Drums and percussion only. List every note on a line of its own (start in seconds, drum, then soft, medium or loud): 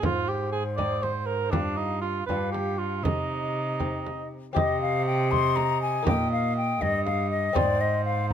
0.03 frame drum medium
0.79 frame drum soft
1.03 frame drum soft
1.53 frame drum medium
2.29 frame drum soft
2.54 frame drum soft
3.05 frame drum medium
3.80 frame drum soft
4.07 frame drum soft
4.56 frame drum medium
5.32 frame drum medium
5.57 frame drum medium
6.07 frame drum medium
6.82 frame drum medium
7.07 frame drum medium
7.56 frame drum medium